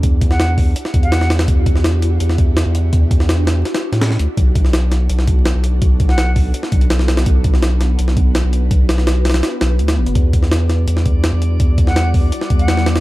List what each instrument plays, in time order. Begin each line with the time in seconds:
Already playing: ambient pad D4 E4 F#4 G4
0.03 sub bass E2, kick, closed hi-hat
0.21 kick, closed hi-hat
0.31 flute F#5, snare
0.40 snare, closed hi-hat
0.58 kick, open hi-hat
0.76 closed hi-hat
0.85 snare
0.94 sub bass E2, kick, closed hi-hat
1.03 flute F#5, closed hi-hat
1.12 snare, closed hi-hat
1.21 snare
1.30 snare, closed hi-hat
1.39 snare, closed hi-hat
1.48 sub bass E2, kick, closed hi-hat
1.66 kick, closed hi-hat
1.75 snare
1.84 snare, closed hi-hat
2.02 closed hi-hat
2.20 sub bass E2, closed hi-hat
2.30 snare
2.38 kick, closed hi-hat
2.57 snare, closed hi-hat
2.66 sub bass E2
2.75 closed hi-hat
2.93 sub bass E2, kick, closed hi-hat
3.11 kick, closed hi-hat
3.20 snare
3.29 snare, closed hi-hat
3.47 snare, closed hi-hat
3.65 snare, closed hi-hat
3.74 snare, closed hi-hat
3.92 sub bass A2, snare, closed hi-hat
4.01 snare, closed hi-hat
4.11 snare
4.19 sub bass D2, closed hi-hat
4.37 sub bass B1, ambient pad B3 A4, kick, closed hi-hat
4.55 kick, closed hi-hat
4.65 snare
4.73 snare, closed hi-hat
4.92 snare, closed hi-hat
5.09 sub bass B1, closed hi-hat
5.19 snare
5.27 kick, closed hi-hat
5.45 snare, closed hi-hat
5.55 sub bass B1
5.64 closed hi-hat
5.82 sub bass B1, kick, closed hi-hat
6.00 kick, closed hi-hat
6.09 flute F#5, snare
6.18 snare, closed hi-hat
6.36 kick, open hi-hat
6.54 closed hi-hat
6.63 snare
6.72 sub bass B1, kick, closed hi-hat
6.81 closed hi-hat
6.90 snare, closed hi-hat
6.99 snare
7.08 snare, closed hi-hat
7.17 snare, closed hi-hat
7.26 sub bass B1, ambient pad B4, kick, closed hi-hat
7.44 kick, closed hi-hat
7.54 snare
7.63 snare, closed hi-hat
7.81 snare, closed hi-hat
7.99 sub bass B1, closed hi-hat
8.08 snare
8.17 kick, closed hi-hat
8.35 snare, closed hi-hat
8.44 sub bass B1
8.53 closed hi-hat
8.71 sub bass B1, kick, closed hi-hat
8.89 snare, closed hi-hat
8.98 snare
9.07 snare, closed hi-hat
9.25 snare, closed hi-hat
9.30 snare, closed hi-hat
9.34 snare, closed hi-hat
9.43 snare, closed hi-hat
9.61 sub bass B1, snare, closed hi-hat
9.79 sub bass D2, closed hi-hat
9.88 snare, closed hi-hat
9.97 sub bass A1
10.06 sub bass F#1, closed hi-hat
10.15 sub bass E2, ambient pad G3 D4 E4 F#4, synth texture D5 D6, kick, closed hi-hat
10.33 kick, closed hi-hat
10.43 snare
10.51 snare, closed hi-hat
10.69 snare, closed hi-hat
10.87 sub bass E2, closed hi-hat
10.97 snare
11.06 kick, closed hi-hat
11.24 snare, closed hi-hat
11.33 sub bass E2
11.42 closed hi-hat
11.60 sub bass E2, kick, closed hi-hat
11.78 kick, closed hi-hat
11.87 flute F#5, snare
11.96 snare, closed hi-hat
12.14 kick, open hi-hat
12.32 closed hi-hat
12.41 snare
12.50 sub bass E2, kick, closed hi-hat
12.59 flute F#5, closed hi-hat
12.68 snare, closed hi-hat
12.77 snare
12.86 snare, closed hi-hat
12.96 snare, closed hi-hat